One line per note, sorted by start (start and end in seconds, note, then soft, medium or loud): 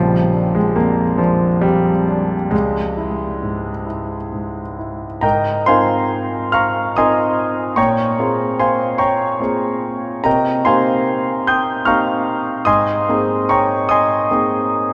0.00 2.48 A#1 soft
0.00 0.56 F3 medium
0.34 1.03 D4 soft
0.55 0.77 G#3 medium
0.76 1.46 F2 soft
0.76 1.20 A#3 medium
1.18 1.63 F3 medium
1.18 1.90 D4 soft
1.61 2.34 F2 soft
1.61 2.51 G3 medium
2.08 2.52 D4 soft
2.51 5.19 C#2 soft
2.51 3.86 G#3 medium
2.97 3.69 E4 soft
3.43 4.14 G#2 soft
3.86 4.59 E4 soft
4.32 5.06 G#2 soft
4.78 5.23 E4 soft
5.21 5.65 G#2 soft
5.21 5.64 A#4 soft
5.21 5.64 D#5 soft
5.21 5.64 G5 medium
5.21 5.66 A#5 medium
5.66 6.92 C4 soft
5.66 6.92 D#4 soft
5.66 6.92 F4 soft
5.66 6.92 A#4 soft
5.66 6.50 C5 medium
5.66 6.50 F5 medium
5.66 6.50 G#5 soft
5.66 6.53 C6 medium
6.52 6.92 F5 soft
6.52 6.93 A#5 soft
6.52 6.93 C#6 soft
6.52 6.95 F6 medium
6.97 7.74 C4 soft
6.97 7.74 D#4 soft
6.97 7.75 F4 soft
6.97 7.75 A#4 soft
6.97 7.74 D#5 soft
6.97 7.74 G#5 soft
6.97 7.75 C6 soft
6.97 7.78 D#6 medium
7.76 8.17 A#2 soft
7.76 8.56 C#5 medium
7.76 8.56 G5 soft
7.76 8.56 A#5 soft
7.76 8.60 C#6 medium
8.19 9.38 A#3 soft
8.19 9.39 C4 soft
8.19 9.39 F4 soft
8.19 9.39 G#4 soft
8.59 8.98 C5 soft
8.59 8.99 F5 soft
8.59 8.98 G#5 soft
8.59 9.01 C6 medium
8.98 10.20 C#5 soft
8.98 10.21 G5 soft
8.98 10.20 A#5 soft
8.98 10.24 C#6 medium
9.40 10.20 A#3 soft
9.40 10.20 C4 soft
9.40 10.21 F4 soft
9.40 10.21 G#4 soft
10.24 10.65 C3 soft
10.24 10.63 A#4 soft
10.24 10.63 D#5 soft
10.24 10.64 G5 soft
10.24 10.66 A#5 medium
10.65 11.84 A#3 soft
10.65 11.84 C4 soft
10.65 11.84 D#4 soft
10.65 11.85 G4 soft
10.65 11.44 C5 soft
10.65 11.44 F5 soft
10.65 11.44 G#5 soft
10.65 11.47 C6 medium
11.47 11.85 G5 soft
11.47 11.85 C6 soft
11.47 11.86 D#6 soft
11.47 11.88 G6 medium
11.85 12.62 A#3 soft
11.85 12.62 C4 soft
11.85 12.63 D#4 soft
11.85 12.63 G4 soft
11.85 12.63 F5 soft
11.85 12.63 A#5 soft
11.85 12.63 C#6 soft
11.85 12.66 F6 medium
12.65 13.07 G#2 soft
12.65 13.45 D#5 medium
12.65 13.46 G#5 medium
12.65 13.45 C6 soft
12.65 13.49 D#6 medium
13.09 14.27 A#3 soft
13.09 14.27 C4 soft
13.09 14.27 D#4 soft
13.09 14.28 G#4 soft
13.49 13.88 C#5 soft
13.49 13.88 G5 soft
13.49 13.88 A#5 soft
13.49 13.90 C#6 medium
13.89 14.93 D#5 medium
13.89 14.93 G#5 soft
13.89 14.93 C6 soft
13.89 14.93 D#6 medium
14.31 14.93 A#3 soft
14.31 14.93 C4 soft
14.31 14.93 D#4 soft
14.31 14.93 G#4 soft